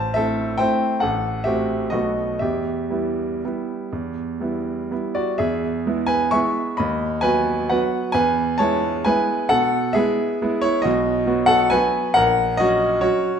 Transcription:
Already playing: A1 C5 A5
0.14 A3 C4 E4 A4 E5
0.58 A3 C4 E4 C5 G5
1.00 A1 A4 F#5
1.44 A3 C4 F#4 G4 E5
1.90 B1 A3 B3 F#4 D#5
2.39 E2 G4 E5
2.90 G3 B3 E4
3.45 G3 B3 E4
3.93 E2
4.40 G3 B3 E4
4.91 G3 B3 E4
5.15 F#4 D5
5.38 E2 G#4 E5
5.86 G#3 B3 E4
6.07 B4 G#5
6.31 G#3 B3 E4 E5 C#6
6.77 D#2 D#5 B5
7.21 F#3 B3 F#4 B4 G#5
7.70 F#3 B3 F#4 B4 F#5
8.12 E2 B4 G#5
8.58 G#3 B3 E4 C#5 A5
9.05 G#3 B3 E4 B4 G#5
9.49 B2 A4 F#5
9.93 G#3 B3 E4 G#4 E5
10.42 G#3 B3 E4
10.61 E4 C#5
10.82 B1 F#4 D#5
11.26 F#3 B3 F#4
11.46 A4 F#5
11.70 F#3 B3 F#4 B4 G#5
12.14 A#1 A#4 F#5
12.57 F#3 C#4 F#4 D#5
13.01 F#3 C#4 F#4 C#5

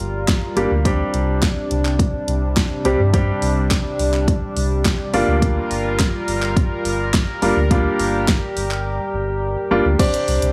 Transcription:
Already playing: G3 F4 A#4
0.00 G1, closed hi-hat
0.28 kick, snare, clap, closed hi-hat
0.56 G1 G3 A#3 D4 G4, closed hi-hat
0.71 D2
0.85 C3 G3 C4 D4 G4, kick, closed hi-hat
1.14 C2, closed hi-hat
1.42 kick, snare, clap, closed hi-hat
1.71 C2, closed hi-hat
1.85 clap
1.99 kick, closed hi-hat
2.28 C2, closed hi-hat
2.57 kick, snare, clap, closed hi-hat
2.85 C2 G3 C4 D4 G4, closed hi-hat
2.99 G2
3.14 G3 C4 D4 G4, kick, closed hi-hat
3.42 C2, open hi-hat
3.71 kick, snare, clap, closed hi-hat
3.99 C2, open hi-hat
4.14 clap
4.28 kick, closed hi-hat
4.56 C2, open hi-hat
4.85 kick, snare, clap, closed hi-hat
5.13 G1 G3 A#3 D4 F4 A#4, open hi-hat
5.28 D2
5.42 kick, closed hi-hat
5.71 G1, open hi-hat
5.99 kick, snare, clap, closed hi-hat
6.28 G1, open hi-hat
6.42 clap
6.57 kick, closed hi-hat
6.85 G1, open hi-hat
7.14 kick, snare, clap, closed hi-hat
7.42 G1 G3 A#3 D4 F4 G4, open hi-hat
7.56 D2
7.71 G3 A#3 D4 F4, kick, closed hi-hat
7.99 G1, open hi-hat
8.28 kick, snare, clap, closed hi-hat
8.57 G1, open hi-hat
8.71 clap
9.14 G1
9.71 G1 G3 A#3 D4 F4
9.85 D2
9.99 C3 G3 C4 D4 G4 C5 D5, kick, closed hi-hat, crash, tambourine, shaker
10.14 closed hi-hat, shaker
10.28 C2, open hi-hat, tambourine, shaker
10.42 C2, closed hi-hat, shaker

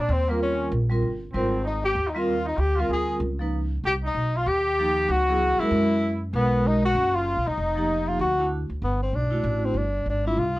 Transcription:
Already playing: D4
0.02 D4
0.09 D#2 C4
0.13 C4
0.29 G3 A#3 C4 F4 A#4
0.42 C#4
0.72 A#1
0.90 G3 C4 F4 A#4
1.02 G1
1.33 G#1 G3 C4 F4 A#4
1.37 C4
1.64 D#4
1.84 G4
1.95 D#2
2.07 D#4
2.14 G3 C4 F4 A#4
2.18 F4
2.45 D#4
2.57 D2 G4
2.76 G3 C4 F4 A#4
2.80 F4
2.89 D2 G#4
2.93 G#4
3.20 C#2
3.39 F3 A#3 D#4 B4
3.84 C2 G4
4.04 D#4
4.14 B1
4.36 F4
4.46 D#2 G4
4.78 F3 A#3 D#4 G4
5.08 C#2 F#4
5.28 F#3 B3 E4 G#4
5.59 G#3 C#4 E4 F#4 A#4, muted upright bass stroke
5.71 F#2
6.33 B1 G#3 B3 C#4 F#4 A#4
6.66 D#4
6.85 F#4
6.95 F#1
7.14 F4
7.37 B1
7.46 C2 D#4
7.57 F1
7.75 F3 A#3 D#4 G4
8.08 F4
8.19 D2 F#4
8.38 A3 D4 E4 F#4
8.70 D2
8.82 G1 B3
9.03 C4
9.13 B1 D4
9.31 A3 D4 E4 F#4
9.44 A1
9.65 C4
9.74 G1 D4
10.06 G#1 D4
10.25 G3 C4 D4 E4 F4
10.37 C2 F4
10.56 G#3 D#4

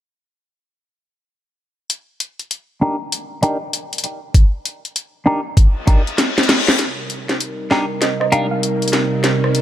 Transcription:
1.90 closed hi-hat
2.20 closed hi-hat
2.39 closed hi-hat
2.51 closed hi-hat
2.81 D4 D#4 G4 A#4
3.12 closed hi-hat
3.43 D4 D#4 G4 A#4, closed hi-hat
3.73 closed hi-hat
3.93 closed hi-hat
3.98 closed hi-hat
4.04 closed hi-hat
4.34 kick, closed hi-hat
4.65 closed hi-hat
4.85 closed hi-hat
4.96 closed hi-hat
5.26 D4 D#4 G4 A#4
5.57 kick, closed hi-hat, reverse cymbal
5.87 D4 D#4 G4 A#4, kick, closed hi-hat
6.07 closed hi-hat
6.18 snare, closed hi-hat
6.38 snare, closed hi-hat
6.43 closed hi-hat
6.49 snare, closed hi-hat
6.68 snare
6.79 C3 G3 D#4 A#4, snare, closed hi-hat, riser
7.10 closed hi-hat
7.29 snare, closed hi-hat
7.40 closed hi-hat
7.71 D4 D#4 G4 A#4, snare
8.01 D#5, snare, closed hi-hat
8.20 D#5, cross-stick
8.32 D4 D#4 G4 A#4 F5, closed hi-hat
8.51 F5
8.63 closed hi-hat
8.82 closed hi-hat
8.88 closed hi-hat
8.93 snare, closed hi-hat
9.24 snare, closed hi-hat
9.44 cross-stick
9.55 closed hi-hat

